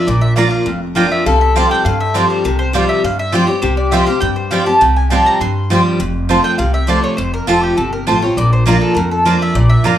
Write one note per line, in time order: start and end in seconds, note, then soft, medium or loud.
0.00 1.08 A#4 loud
0.07 0.46 A#1 loud
0.07 0.64 A#2 medium
0.07 0.22 D5 medium
0.21 0.35 E5 medium
0.36 0.65 F3 medium
0.36 0.46 A#3 medium
0.36 0.66 A#3 medium
0.36 0.66 D4 loud
0.36 0.46 F4 loud
0.36 0.66 F4 loud
0.36 0.47 D5 loud
0.36 0.49 F5 medium
0.36 0.47 A#5 loud
0.51 0.79 F5 medium
0.66 1.05 F1 medium
0.66 1.23 F2 medium
0.95 1.24 F3 medium
0.95 1.05 A#3 medium
0.95 1.24 A#3 medium
0.95 1.25 D4 medium
0.95 1.06 F4 medium
0.95 1.25 F4 loud
0.95 1.06 D5 medium
0.95 1.11 G5 medium
0.95 1.06 A#5 medium
1.12 1.26 E5 medium
1.26 1.64 C2 medium
1.26 1.83 C3 medium
1.26 3.70 A4 loud
1.26 1.41 F5 medium
1.41 1.55 E5 medium
1.56 1.84 F3 medium
1.56 1.84 G3 medium
1.56 1.65 C4 medium
1.56 1.85 C4 loud
1.56 1.65 F4 medium
1.56 1.85 G4 loud
1.56 1.65 C5 loud
1.56 1.71 F5 medium
1.56 1.66 G5 loud
1.71 1.84 G5 loud
1.85 2.24 G2 medium
1.85 2.42 G2 loud
1.85 2.00 F5 medium
2.00 2.14 E5 loud
2.14 2.43 F3 medium
2.14 2.44 G3 medium
2.14 2.24 C4 medium
2.14 2.44 C4 medium
2.14 2.24 F4 medium
2.14 2.44 G4 medium
2.14 2.24 C5 medium
2.14 2.30 D5 medium
2.14 2.25 G5 medium
2.30 2.44 C5 medium
2.44 2.83 C2 medium
2.44 3.01 C3 loud
2.44 2.58 A#4 medium
2.59 2.73 C5 loud
2.73 3.02 F3 medium
2.73 3.02 G3 medium
2.73 2.83 C4 loud
2.73 3.03 C4 loud
2.73 2.84 F4 loud
2.73 3.03 G4 loud
2.73 2.84 C5 medium
2.73 2.89 D5 medium
2.73 2.84 G5 medium
2.89 3.03 E5 medium
3.04 3.42 G2 medium
3.04 3.61 G2 loud
3.04 3.19 F5 loud
3.19 3.33 E5 loud
3.32 3.48 F3 medium
3.32 3.48 G3 loud
3.32 3.42 C4 medium
3.32 3.48 C4 medium
3.32 3.42 F4 loud
3.32 3.47 G4 loud
3.32 3.43 C5 medium
3.32 3.47 D5 medium
3.32 3.43 G5 loud
3.47 3.63 C4 soft
3.47 3.62 G4 medium
3.47 3.61 C#5 medium
3.62 4.01 C2 loud
3.62 4.19 C3 medium
3.62 5.82 G4 medium
3.62 3.77 C5 medium
3.77 3.92 D5 medium
3.91 4.07 F3 medium
3.91 4.08 G3 medium
3.91 4.02 C4 loud
3.91 4.08 C4 loud
3.91 4.02 F4 medium
3.91 4.06 G4 loud
3.91 4.02 C5 loud
3.91 4.06 E5 medium
3.91 4.02 G5 loud
4.07 4.23 C4 medium
4.07 4.21 G4 medium
4.07 4.20 F5 loud
4.20 4.78 G2 medium
4.20 4.61 G2 medium
4.20 4.36 G5 loud
4.36 4.51 C5 medium
4.51 4.66 F3 medium
4.51 4.67 G3 medium
4.51 4.61 C4 medium
4.51 4.67 C4 loud
4.51 4.61 F4 medium
4.51 4.66 G4 medium
4.51 4.62 C5 loud
4.51 4.66 F5 medium
4.51 4.62 G5 medium
4.66 4.82 C4 soft
4.66 4.81 G4 medium
4.66 4.80 A5 loud
4.81 5.20 C2 medium
4.81 5.38 C3 medium
4.81 4.96 G5 medium
4.96 5.10 G#5 medium
5.10 5.39 F3 medium
5.10 5.39 G3 medium
5.10 5.20 C4 medium
5.10 5.40 C4 loud
5.10 5.21 F4 loud
5.10 5.40 G4 medium
5.10 5.21 C5 loud
5.10 5.21 G5 medium
5.10 5.25 A5 medium
5.26 5.40 A#5 loud
5.41 5.79 G2 medium
5.41 5.97 G2 medium
5.41 5.82 C6 medium
5.70 5.98 F3 loud
5.70 5.99 G3 medium
5.70 5.79 C4 medium
5.70 5.99 C4 medium
5.70 5.80 F4 medium
5.70 6.00 G4 loud
5.70 5.80 C5 medium
5.70 5.80 G5 medium
5.99 6.38 F1 medium
5.99 6.56 F2 medium
6.29 6.57 F3 medium
6.29 6.58 A3 medium
6.29 6.39 C4 loud
6.29 6.58 C4 medium
6.29 6.39 F4 medium
6.29 6.59 F4 loud
6.29 6.39 C5 medium
6.29 6.39 A5 loud
6.44 6.58 G5 loud
6.58 6.97 C2 medium
6.58 7.15 C3 medium
6.58 6.73 F5 medium
6.74 6.88 E5 loud
6.87 7.16 F3 medium
6.87 7.17 A3 medium
6.87 6.98 C4 medium
6.87 7.17 C4 loud
6.87 6.98 F4 medium
6.87 7.17 F4 medium
6.87 6.98 C5 medium
6.87 7.03 D5 medium
6.87 6.98 A5 medium
7.04 7.16 C#5 medium
7.17 7.37 F1 medium
7.17 7.75 F2 medium
7.17 7.32 C5 medium
7.34 7.47 A#4 loud
7.47 7.73 F1 medium
7.47 7.76 F3 medium
7.47 7.76 A3 medium
7.47 7.57 C4 medium
7.47 7.77 C4 loud
7.47 7.57 F4 loud
7.47 7.77 F4 loud
7.47 7.63 A4 medium
7.47 7.57 C5 loud
7.47 7.58 A5 loud
7.63 7.77 G4 medium
7.77 8.03 G1 medium
7.77 8.34 C3 medium
7.77 7.92 A4 medium
7.93 8.06 A#4 medium
8.07 8.33 A1 medium
8.07 8.22 F3 medium
8.07 8.22 A3 medium
8.07 8.16 C4 medium
8.07 8.23 C4 medium
8.07 8.16 F4 medium
8.07 8.21 F4 loud
8.07 8.22 C5 medium
8.07 8.17 C5 medium
8.07 8.17 A5 medium
8.22 8.37 C4 medium
8.22 8.36 F4 medium
8.22 8.36 C#5 medium
8.37 8.75 A#1 loud
8.37 8.94 A#2 loud
8.37 8.52 D5 loud
8.53 8.66 C5 medium
8.66 8.94 F3 medium
8.66 8.76 A#3 loud
8.66 8.95 A#3 loud
8.66 8.95 D4 medium
8.66 8.76 F4 loud
8.66 8.96 F4 loud
8.66 8.81 A#4 medium
8.66 8.76 D5 loud
8.66 8.76 A#5 loud
8.81 8.94 A4 medium
8.95 9.34 F2 medium
8.95 9.53 F2 loud
8.95 9.10 A#4 loud
9.11 9.25 A4 medium
9.25 9.54 F3 medium
9.25 9.35 A#3 medium
9.25 9.54 A#3 medium
9.25 9.54 D4 medium
9.25 9.35 F4 medium
9.25 9.55 F4 loud
9.25 9.41 C5 medium
9.25 9.35 D5 loud
9.25 9.36 A#5 medium
9.42 9.55 E5 loud
9.55 9.74 A#1 loud
9.55 9.98 A#2 loud
9.55 9.70 D5 medium
9.69 9.84 E5 loud
9.84 9.98 G1 medium
9.84 9.98 F3 medium
9.84 9.94 A#3 loud
9.84 9.98 A#3 medium
9.84 9.98 D4 loud
9.84 9.94 F4 medium
9.84 9.98 F4 loud
9.84 9.94 D5 medium
9.84 9.98 F5 medium
9.84 9.94 A#5 loud